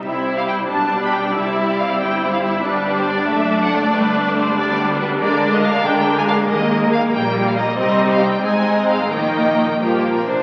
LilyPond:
<<
  \new Staff \with { instrumentName = "Violin section" } { \time 6/8 \key c \major \tempo 4. = 93 e''8. f''16 g''8 a''8. b''16 g''8 | e''4 f''8 g''8. f''16 e''8 | b'8. c''16 d''8 e''8. fis''16 d''8 | b'4 c''8 d''8. c''16 b'8 |
\key ees \major d''8. ees''16 f''8 g''8. aes''16 f''8 | ees''4 f''8 g''8. f''16 ees''8 | ees''8. f''16 g''8 aes''8. ees''16 f''8 | g''2~ g''8 r8 | }
  \new Staff \with { instrumentName = "Violin section" } { \time 6/8 \key c \major << { c''4. d''4.~ | d''4. c''4. | d''2.~ | d''2. |
\key ees \major bes'2.~ | bes'2. | ees''4. ees''4. | ees''4. <bes g'>8. <c' bes'>16 <d' c''>8 | } \\ { g16 c'16 e'16 g'16 e'16 c'16 g16 b16 d'16 g'16 d'16 b16 | g16 c'16 e'16 g'16 e'16 c'16 g16 c'16 e'16 g'16 e'16 c'16 | g16 b16 d'16 g'16 d'16 b16 a16 d'16 a16 d'16 a16 d'16 | g16 b16 d'16 b16 g16 b16 d'16 b16 g16 b16 d'16 b16 |
aes16 bes16 d'16 f'16 d'16 bes16 aes16 bes16 d'16 f'16 d'16 bes16 | g16 bes16 ees'16 bes16 g16 bes16 ees'16 bes16 g16 bes16 ees'16 bes16 | ees'4. ees'4. | ees'4. r4. | } >> }
  \new Staff \with { instrumentName = "Viola section" } { \time 6/8 \key c \major << { e'4. d'4. | e'2. | d'2.~ | d'2. |
\key ees \major d'2. | bes2. | c'4. c'4. | bes4. bes4 r8 | } \\ { g2.~ | g2. | g4. a4.~ | a4. g4. |
aes2.~ | aes4. g4. | g4. aes4. | ees4. f4 r8 | } >> }
  \new Staff \with { instrumentName = "Cello section" } { \clef bass \time 6/8 \key c \major c4. b,4. | c4. g,4. | g,4. fis,4. | g,4. d,4. |
\key ees \major d4. d4. | ees4. bes,4. | c4. aes,4. | bes,4. g,8. bes,16 c8 | }
  \new Staff \with { instrumentName = "Double bass section" } { \clef bass \time 6/8 \key c \major c,4. b,,4. | c,4. g,,4. | g,,4. fis,,4. | g,,4. d,4. |
\key ees \major d,4. d,4. | ees,4. bes,,4. | c,4. aes,,4. | bes,,2~ bes,,8 r8 | }
>>